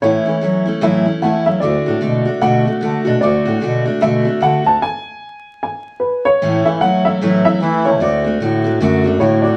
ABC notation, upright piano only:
X:1
M:4/4
L:1/8
Q:"Swing" 1/4=150
K:A
V:1 name="Upright piano"
c4 e2 f e | d4 f3 z | d4 e2 f a | g4 g2 B c- |
c e f e2 e2 c | d2 z4 c d |]